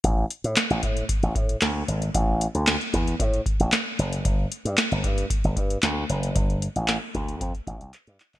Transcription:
<<
  \new Staff \with { instrumentName = "Slap bass" } { \clef bass \time 4/4 \key g \mixolydian \tempo 4 = 114 a,,8 r16 a,16 r16 a,,16 a,8 r16 a,,16 a,8 d,8 gis,,8 | a,,8. d,8 r16 e,8 a,8 r16 a,,16 r8 fis,,8 | g,,8 r16 g,16 r16 g,,16 g,8 r16 g,,16 g,8 d,8 fis,,8 | g,,8. a,,8 r16 d,8 f,16 r16 a,,16 c,16 r16 g,16 r16 fis,,16 | }
  \new DrumStaff \with { instrumentName = "Drums" } \drummode { \time 4/4 <hh bd>8 hh16 hh16 <hc hh sn>16 hh16 <hh bd>16 hh16 <hh bd>16 hh16 <hh bd>16 hh16 <hc hh sn>8 hh16 hh16 | <hh bd>8 hh16 hh16 <hc hh sn>16 hh16 <hh bd>16 hh16 <hh bd>16 hh16 <hh bd>16 hh16 <hc hh sn>8 hh16 hh16 | <hh bd>8 hh16 hh16 <hc hh sn>16 hh16 <hh bd>16 hh16 <hh bd>16 hh16 <hh bd>16 hh16 <hc hh sn>8 hh16 hh16 | <hh bd>16 hh16 hh16 hh16 <hc hh sn>8 <hh bd>16 hh16 <hh bd>16 hh16 <hh bd>16 hh16 <hc hh>16 hh16 <hc hh>16 <hc hh>16 | }
>>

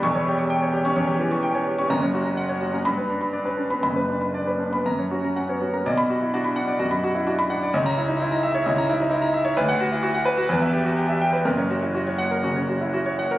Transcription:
<<
  \new Staff \with { instrumentName = "Grand piano" } { \time 4/4 \key b \minor \tempo 4 = 128 << { cis'''8 r2. r8 | ais''8 r4. b''8 r4. | b''8 r4. ais''8 r4. | r16 b''8 r2. r16 |
r16 ais''8 r2. r16 | r16 fis''8 r2 r8. g''8 | r4. fis''8 r2 | } \\ { r16 cis''16 g'16 cis'''16 g''16 cis''16 g'16 cis'''16 cis''16 g'16 e16 cis'''16 g''16 cis''16 g'16 cis'''16 | r16 cis''16 fis'16 ais''16 fis''16 cis''16 fis'16 ais''16 r16 b'8 b''16 d''16 b'8 b''16 | r16 b'8 b''16 d''16 b'8 b''16 r16 cis''16 fis'16 ais''16 fis''16 cis''16 fis'16 ais''16 | d''8 fis'16 e'16 fis'16 b''16 fis''16 d''16 fis'16 b''16 fis'16 e'16 fis'16 b''16 fis''16 d''16 |
cis''8 e'16 dis'16 e'16 ais''16 e''16 cis''16 e'16 ais''16 e'16 dis'16 e'16 ais''16 e''16 cis''16 | b'8 fis'16 e'16 fis'16 fis''16 b'16 fis'16 b'16 e''16 g'16 fis'16 g'16 e''8 b'16 | ais'16 cis''16 fis'16 e'16 fis'16 cis''8 ais'16 fis'16 cis''16 fis'16 e'16 fis'16 cis''16 fis''16 ais'16 | } >> }
  \new Staff \with { instrumentName = "Grand piano" } { \time 4/4 \key b \minor <e,, e,>4.~ <e,, e,>16 cis'16 e,4.~ e,16 cis'16 | <fis,, fis,>4.~ <fis,, fis,>16 cis'16 g,8 d'8 d'16 cis'16 d'16 b16 | <fis,, fis,>8 d'8 d'16 cis'16 d'16 b16 fis,8 cis'8 cis'16 b16 cis'16 ais16 | b,,4 d'8 d'8 fis,8 r8 d'8 d'8 |
cis,2 cis,8 dis'16 r4 r16 | d,2 e,2 | <fis,, fis,>2 cis8 r4. | }
>>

